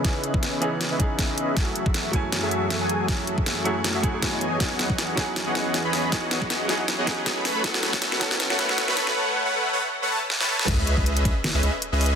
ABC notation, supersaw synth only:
X:1
M:4/4
L:1/16
Q:"Swing 16ths" 1/4=158
K:C#m
V:1 name="Supersaw synth"
[CGBde]3 [CGBde]3 [CGBde] z2 [CGBde]4 [CGBde]3 | [F,FGAe]3 [F,FGAe]3 [F,FGAe] z2 [F,FGAe]4 [F,FGAg]3 | [F,FGAe]3 [F,FGAe]3 [F,FGAe] z2 [F,FGAe] [F,FGAf] z2 [E,B,Gcdg]3 | [E,B,Gcdf]3 [E,B,Gcdf]3 [E,B,Gcdf] z2 [E,B,Gcdf]4 [E,B,Gcdb]3 |
[E,B,Gcdf]3 [E,B,Gcdf]3 [E,B,Gcdf] z2 [E,B,Gcdf]4 [A,ABcb]3 | [A,ABcf]3 [A,ABcf]3 [A,ABcf] z2 [A,ABcf]4 [A,ABcb]3 | [A,ABcf]3 [A,ABcf]3 [A,ABcf] z2 [A,ABcf] [A,ABca] z2 [A,ABca]3 | [CGBde]3 [CGBde]3 [CGBde] z2 [CGBde] [CGBde] z2 [CGBde]3 |]